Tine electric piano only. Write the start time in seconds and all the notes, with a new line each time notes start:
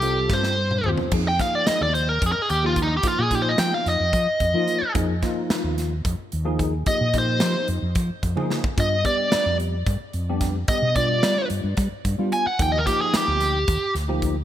0.02 G3 C4 F4 A4
0.85 G3 C4 F4 C5
1.12 F3 A#3 D#4 G#4
1.40 F3 A#3 D#4 G#4
2.63 F3 A#3 D#4 G4
3.04 F3 A#3 D#4 F4
3.32 F3 A#3 D#4 F4
4.54 F3 A#3 D#4 F4
4.94 F3 A#3 D#4 G#4
5.22 F3 A#3 D#4 F4
6.45 F3 A#3 D#4 G#4
6.86 F3 A#3 D#4 G4
7.13 F3 A#3 D#4 G4
8.36 F3 A#3 D#4 G#4
8.77 G3 B3 D4 F4
9.04 G3 B3 D4 G4
10.29 G3 B3 D4 G4
10.68 G3 B3 D4 G4
10.96 G3 B3 D4 F4
12.18 G3 B3 D4 F4
12.59 F3 A#3 D#4 G4
12.86 F3 A#3 D#4 G4
14.08 F3 A#3 D#4 G4